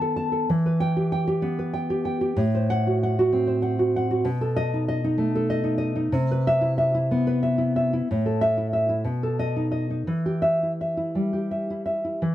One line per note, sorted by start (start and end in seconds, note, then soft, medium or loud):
0.00 0.45 D#3 medium
0.00 0.49 B3 medium
0.00 0.31 A4 medium
0.00 0.49 B4 medium
0.00 0.15 A5 medium
0.16 0.49 A5 medium
0.32 0.49 A4 medium
0.50 2.35 E3 medium
0.66 1.57 B4 medium
0.80 1.06 G5 loud
0.97 1.26 G4 medium
1.12 1.72 G5 medium
1.27 1.89 G4 medium
1.42 2.36 B3 medium
1.59 2.38 B4 medium
1.74 2.04 G5 medium
1.90 2.20 G4 medium
2.05 2.38 G5 medium
2.21 2.38 G4 medium
2.37 4.22 A2 medium
2.55 3.46 C5 medium
2.70 2.97 F#5 medium
2.87 3.18 F#4 medium
3.03 3.61 F#5 medium
3.19 3.78 F#4 medium
3.33 4.27 C4 medium
3.47 4.26 C5 medium
3.62 3.95 F#5 medium
3.79 4.09 F#4 medium
3.96 4.28 F#5 medium
4.11 4.27 F#4 medium
4.25 6.10 B2 loud
4.41 5.34 A4 medium
4.56 4.83 D#5 loud
4.74 5.03 D#4 medium
4.88 5.49 D#5 medium
5.04 5.62 D#4 medium
5.18 6.13 A3 medium
5.35 6.14 A4 medium
5.50 5.77 D#5 medium
5.64 5.94 D#4 medium
5.78 6.12 D#5 medium
5.96 6.13 D#4 medium
6.12 8.01 C3 loud
6.31 7.26 B4 medium
6.47 6.72 E5 loud
6.61 6.93 E4 medium
6.78 7.41 E5 medium
6.94 7.57 E4 medium
7.11 8.07 B3 medium
7.27 8.07 B4 medium
7.43 7.75 E5 medium
7.58 7.92 E4 medium
7.76 8.07 E5 medium
7.93 8.08 E4 medium
8.11 9.03 A2 medium
8.26 9.06 A4 medium
8.41 8.66 E5 medium
8.57 8.88 E4 medium
8.73 9.05 E5 medium
8.89 9.05 E4 medium
9.04 10.03 B2 medium
9.23 10.08 A4 medium
9.39 9.65 D#5 medium
9.56 9.89 D#4 medium
9.72 10.06 D#5 medium
9.90 10.07 D#4 medium
10.07 12.16 E3 medium
10.26 11.31 G4 medium
10.42 10.71 E5 medium
10.63 10.96 E4 soft
10.81 11.50 E5 medium
10.97 11.69 E4 medium
11.15 12.20 G3 medium
11.33 12.20 G4 soft
11.51 11.84 E5 medium
11.70 12.03 E4 soft
11.86 12.20 E5 medium
12.04 12.21 E4 soft
12.22 12.35 E3 medium